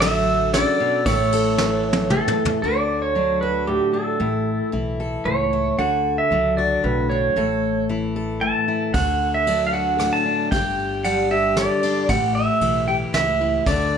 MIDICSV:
0, 0, Header, 1, 5, 480
1, 0, Start_track
1, 0, Key_signature, 2, "major"
1, 0, Tempo, 524934
1, 970, Time_signature, 3, 2, 24, 8
1, 12781, End_track
2, 0, Start_track
2, 0, Title_t, "Pedal steel guitar"
2, 0, Program_c, 0, 26
2, 4, Note_on_c, 0, 76, 102
2, 12, Note_on_c, 0, 69, 84
2, 458, Note_off_c, 0, 69, 0
2, 489, Note_on_c, 0, 74, 99
2, 495, Note_on_c, 0, 69, 77
2, 502, Note_off_c, 0, 76, 0
2, 939, Note_off_c, 0, 69, 0
2, 966, Note_off_c, 0, 74, 0
2, 970, Note_on_c, 0, 73, 94
2, 975, Note_on_c, 0, 69, 72
2, 1915, Note_off_c, 0, 69, 0
2, 1926, Note_on_c, 0, 69, 94
2, 2131, Note_off_c, 0, 73, 0
2, 2397, Note_on_c, 0, 74, 96
2, 2421, Note_off_c, 0, 69, 0
2, 2757, Note_off_c, 0, 74, 0
2, 2760, Note_on_c, 0, 73, 77
2, 3099, Note_off_c, 0, 73, 0
2, 3119, Note_on_c, 0, 71, 79
2, 3359, Note_on_c, 0, 67, 70
2, 3371, Note_off_c, 0, 71, 0
2, 3587, Note_off_c, 0, 67, 0
2, 3597, Note_on_c, 0, 69, 65
2, 4287, Note_off_c, 0, 69, 0
2, 4805, Note_on_c, 0, 73, 78
2, 5291, Note_on_c, 0, 78, 96
2, 5302, Note_off_c, 0, 73, 0
2, 5649, Note_off_c, 0, 78, 0
2, 5653, Note_on_c, 0, 76, 82
2, 6008, Note_on_c, 0, 74, 72
2, 6023, Note_off_c, 0, 76, 0
2, 6254, Note_on_c, 0, 71, 79
2, 6257, Note_off_c, 0, 74, 0
2, 6487, Note_on_c, 0, 73, 69
2, 6500, Note_off_c, 0, 71, 0
2, 7174, Note_off_c, 0, 73, 0
2, 7692, Note_on_c, 0, 81, 86
2, 8173, Note_on_c, 0, 78, 90
2, 8188, Note_off_c, 0, 81, 0
2, 8509, Note_off_c, 0, 78, 0
2, 8544, Note_on_c, 0, 76, 78
2, 8815, Note_off_c, 0, 76, 0
2, 8839, Note_on_c, 0, 77, 64
2, 8895, Note_off_c, 0, 77, 0
2, 8898, Note_on_c, 0, 78, 81
2, 9260, Note_on_c, 0, 81, 91
2, 9267, Note_off_c, 0, 78, 0
2, 9608, Note_off_c, 0, 81, 0
2, 9612, Note_on_c, 0, 79, 92
2, 10100, Note_on_c, 0, 78, 84
2, 10108, Note_off_c, 0, 79, 0
2, 10321, Note_off_c, 0, 78, 0
2, 10343, Note_on_c, 0, 76, 73
2, 10583, Note_on_c, 0, 74, 73
2, 10586, Note_off_c, 0, 76, 0
2, 11061, Note_on_c, 0, 78, 94
2, 11074, Note_off_c, 0, 74, 0
2, 11282, Note_off_c, 0, 78, 0
2, 11292, Note_on_c, 0, 76, 83
2, 11740, Note_off_c, 0, 76, 0
2, 11774, Note_on_c, 0, 79, 78
2, 11839, Note_off_c, 0, 79, 0
2, 12016, Note_on_c, 0, 76, 80
2, 12500, Note_on_c, 0, 74, 73
2, 12510, Note_off_c, 0, 76, 0
2, 12781, Note_off_c, 0, 74, 0
2, 12781, End_track
3, 0, Start_track
3, 0, Title_t, "Steel-string acoustic guitar"
3, 0, Program_c, 1, 25
3, 0, Note_on_c, 1, 50, 78
3, 0, Note_on_c, 1, 62, 66
3, 0, Note_on_c, 1, 66, 73
3, 12, Note_on_c, 1, 54, 61
3, 485, Note_off_c, 1, 50, 0
3, 496, Note_on_c, 1, 49, 75
3, 730, Note_off_c, 1, 49, 0
3, 734, Note_on_c, 1, 47, 62
3, 939, Note_off_c, 1, 62, 0
3, 941, Note_off_c, 1, 54, 0
3, 972, Note_off_c, 1, 47, 0
3, 972, Note_off_c, 1, 66, 0
3, 975, Note_on_c, 1, 45, 78
3, 983, Note_on_c, 1, 64, 64
3, 1221, Note_on_c, 1, 69, 61
3, 1450, Note_on_c, 1, 52, 66
3, 1920, Note_off_c, 1, 45, 0
3, 1931, Note_on_c, 1, 45, 69
3, 2380, Note_off_c, 1, 45, 0
3, 2385, Note_off_c, 1, 69, 0
3, 2386, Note_off_c, 1, 64, 0
3, 2409, Note_off_c, 1, 52, 0
3, 2412, Note_on_c, 1, 50, 66
3, 2420, Note_on_c, 1, 66, 62
3, 2883, Note_on_c, 1, 54, 47
3, 2890, Note_on_c, 1, 62, 49
3, 3121, Note_off_c, 1, 66, 0
3, 3132, Note_on_c, 1, 66, 53
3, 3359, Note_on_c, 1, 45, 55
3, 3590, Note_off_c, 1, 62, 0
3, 3601, Note_on_c, 1, 62, 44
3, 3815, Note_off_c, 1, 45, 0
3, 3816, Note_off_c, 1, 62, 0
3, 3817, Note_off_c, 1, 54, 0
3, 3822, Note_off_c, 1, 50, 0
3, 3838, Note_on_c, 1, 45, 67
3, 3844, Note_on_c, 1, 64, 52
3, 3850, Note_off_c, 1, 66, 0
3, 4314, Note_off_c, 1, 64, 0
3, 4319, Note_on_c, 1, 52, 52
3, 4325, Note_on_c, 1, 64, 49
3, 4571, Note_on_c, 1, 69, 57
3, 4795, Note_off_c, 1, 45, 0
3, 4806, Note_on_c, 1, 45, 55
3, 5045, Note_off_c, 1, 64, 0
3, 5056, Note_on_c, 1, 64, 50
3, 5260, Note_off_c, 1, 45, 0
3, 5264, Note_off_c, 1, 64, 0
3, 5285, Note_off_c, 1, 52, 0
3, 5291, Note_on_c, 1, 50, 69
3, 5293, Note_off_c, 1, 69, 0
3, 5296, Note_on_c, 1, 66, 61
3, 5775, Note_on_c, 1, 54, 56
3, 5783, Note_on_c, 1, 62, 50
3, 6008, Note_off_c, 1, 66, 0
3, 6019, Note_on_c, 1, 66, 58
3, 6251, Note_on_c, 1, 45, 54
3, 6493, Note_off_c, 1, 62, 0
3, 6504, Note_on_c, 1, 62, 44
3, 6703, Note_off_c, 1, 45, 0
3, 6704, Note_off_c, 1, 50, 0
3, 6706, Note_off_c, 1, 54, 0
3, 6710, Note_off_c, 1, 62, 0
3, 6735, Note_on_c, 1, 45, 73
3, 6736, Note_off_c, 1, 66, 0
3, 6742, Note_on_c, 1, 69, 64
3, 7218, Note_on_c, 1, 52, 52
3, 7226, Note_on_c, 1, 64, 49
3, 7458, Note_off_c, 1, 69, 0
3, 7461, Note_on_c, 1, 69, 57
3, 7682, Note_off_c, 1, 45, 0
3, 7693, Note_on_c, 1, 45, 57
3, 7927, Note_off_c, 1, 64, 0
3, 7938, Note_on_c, 1, 64, 53
3, 8145, Note_off_c, 1, 45, 0
3, 8147, Note_off_c, 1, 64, 0
3, 8149, Note_off_c, 1, 69, 0
3, 8175, Note_on_c, 1, 50, 64
3, 8177, Note_off_c, 1, 52, 0
3, 8181, Note_on_c, 1, 66, 66
3, 8657, Note_on_c, 1, 54, 51
3, 8665, Note_on_c, 1, 62, 48
3, 8891, Note_off_c, 1, 66, 0
3, 8902, Note_on_c, 1, 66, 57
3, 9131, Note_on_c, 1, 45, 54
3, 9366, Note_off_c, 1, 62, 0
3, 9377, Note_on_c, 1, 62, 48
3, 9584, Note_off_c, 1, 45, 0
3, 9587, Note_off_c, 1, 50, 0
3, 9587, Note_off_c, 1, 62, 0
3, 9588, Note_off_c, 1, 54, 0
3, 9614, Note_on_c, 1, 43, 64
3, 9615, Note_off_c, 1, 66, 0
3, 9618, Note_on_c, 1, 67, 66
3, 10097, Note_on_c, 1, 55, 55
3, 10106, Note_on_c, 1, 62, 53
3, 10337, Note_off_c, 1, 67, 0
3, 10341, Note_on_c, 1, 67, 56
3, 10576, Note_on_c, 1, 50, 58
3, 10813, Note_off_c, 1, 62, 0
3, 10824, Note_on_c, 1, 62, 53
3, 11026, Note_off_c, 1, 43, 0
3, 11027, Note_off_c, 1, 50, 0
3, 11028, Note_off_c, 1, 55, 0
3, 11030, Note_off_c, 1, 67, 0
3, 11031, Note_off_c, 1, 62, 0
3, 11057, Note_on_c, 1, 45, 70
3, 11066, Note_on_c, 1, 67, 67
3, 11539, Note_on_c, 1, 52, 55
3, 11546, Note_on_c, 1, 64, 52
3, 11769, Note_off_c, 1, 67, 0
3, 11780, Note_on_c, 1, 67, 59
3, 12003, Note_off_c, 1, 45, 0
3, 12014, Note_on_c, 1, 45, 66
3, 12250, Note_off_c, 1, 64, 0
3, 12261, Note_on_c, 1, 64, 51
3, 12466, Note_off_c, 1, 45, 0
3, 12468, Note_off_c, 1, 67, 0
3, 12469, Note_off_c, 1, 64, 0
3, 12497, Note_off_c, 1, 52, 0
3, 12500, Note_on_c, 1, 50, 74
3, 12505, Note_on_c, 1, 66, 64
3, 12781, Note_off_c, 1, 50, 0
3, 12781, Note_off_c, 1, 66, 0
3, 12781, End_track
4, 0, Start_track
4, 0, Title_t, "Upright bass"
4, 0, Program_c, 2, 32
4, 0, Note_on_c, 2, 33, 93
4, 579, Note_off_c, 2, 33, 0
4, 966, Note_on_c, 2, 33, 84
4, 2016, Note_off_c, 2, 33, 0
4, 2408, Note_on_c, 2, 38, 74
4, 3458, Note_off_c, 2, 38, 0
4, 3843, Note_on_c, 2, 33, 81
4, 4196, Note_off_c, 2, 33, 0
4, 4329, Note_on_c, 2, 35, 65
4, 4738, Note_off_c, 2, 35, 0
4, 4801, Note_on_c, 2, 37, 74
4, 5213, Note_off_c, 2, 37, 0
4, 5289, Note_on_c, 2, 38, 75
4, 5640, Note_off_c, 2, 38, 0
4, 5766, Note_on_c, 2, 37, 65
4, 6177, Note_off_c, 2, 37, 0
4, 6255, Note_on_c, 2, 35, 77
4, 6662, Note_off_c, 2, 35, 0
4, 6730, Note_on_c, 2, 33, 80
4, 7782, Note_off_c, 2, 33, 0
4, 8177, Note_on_c, 2, 38, 79
4, 9227, Note_off_c, 2, 38, 0
4, 9619, Note_on_c, 2, 31, 82
4, 10668, Note_off_c, 2, 31, 0
4, 11054, Note_on_c, 2, 33, 77
4, 11405, Note_off_c, 2, 33, 0
4, 11531, Note_on_c, 2, 35, 72
4, 11941, Note_off_c, 2, 35, 0
4, 12009, Note_on_c, 2, 37, 73
4, 12419, Note_off_c, 2, 37, 0
4, 12494, Note_on_c, 2, 38, 83
4, 12781, Note_off_c, 2, 38, 0
4, 12781, End_track
5, 0, Start_track
5, 0, Title_t, "Drums"
5, 14, Note_on_c, 9, 38, 91
5, 14, Note_on_c, 9, 51, 69
5, 106, Note_off_c, 9, 38, 0
5, 106, Note_off_c, 9, 51, 0
5, 490, Note_on_c, 9, 38, 71
5, 490, Note_on_c, 9, 51, 61
5, 582, Note_off_c, 9, 38, 0
5, 582, Note_off_c, 9, 51, 0
5, 966, Note_on_c, 9, 51, 66
5, 968, Note_on_c, 9, 36, 112
5, 1058, Note_off_c, 9, 51, 0
5, 1060, Note_off_c, 9, 36, 0
5, 1210, Note_on_c, 9, 51, 71
5, 1301, Note_off_c, 9, 51, 0
5, 1447, Note_on_c, 9, 38, 71
5, 1539, Note_off_c, 9, 38, 0
5, 1764, Note_on_c, 9, 48, 85
5, 1855, Note_off_c, 9, 48, 0
5, 1922, Note_on_c, 9, 47, 65
5, 2013, Note_off_c, 9, 47, 0
5, 2082, Note_on_c, 9, 45, 94
5, 2174, Note_off_c, 9, 45, 0
5, 2242, Note_on_c, 9, 43, 93
5, 2334, Note_off_c, 9, 43, 0
5, 8174, Note_on_c, 9, 51, 52
5, 8177, Note_on_c, 9, 36, 97
5, 8266, Note_off_c, 9, 51, 0
5, 8268, Note_off_c, 9, 36, 0
5, 8659, Note_on_c, 9, 51, 54
5, 8751, Note_off_c, 9, 51, 0
5, 9139, Note_on_c, 9, 37, 69
5, 9139, Note_on_c, 9, 51, 51
5, 9231, Note_off_c, 9, 37, 0
5, 9231, Note_off_c, 9, 51, 0
5, 9619, Note_on_c, 9, 36, 101
5, 9619, Note_on_c, 9, 51, 54
5, 9710, Note_off_c, 9, 36, 0
5, 9711, Note_off_c, 9, 51, 0
5, 10098, Note_on_c, 9, 51, 54
5, 10190, Note_off_c, 9, 51, 0
5, 10576, Note_on_c, 9, 38, 70
5, 10576, Note_on_c, 9, 51, 48
5, 10667, Note_off_c, 9, 38, 0
5, 10667, Note_off_c, 9, 51, 0
5, 10815, Note_on_c, 9, 51, 54
5, 10907, Note_off_c, 9, 51, 0
5, 11052, Note_on_c, 9, 51, 51
5, 11056, Note_on_c, 9, 36, 96
5, 11144, Note_off_c, 9, 51, 0
5, 11147, Note_off_c, 9, 36, 0
5, 11533, Note_on_c, 9, 51, 53
5, 11624, Note_off_c, 9, 51, 0
5, 12013, Note_on_c, 9, 38, 66
5, 12013, Note_on_c, 9, 51, 45
5, 12105, Note_off_c, 9, 38, 0
5, 12105, Note_off_c, 9, 51, 0
5, 12495, Note_on_c, 9, 36, 96
5, 12497, Note_on_c, 9, 51, 58
5, 12587, Note_off_c, 9, 36, 0
5, 12588, Note_off_c, 9, 51, 0
5, 12781, End_track
0, 0, End_of_file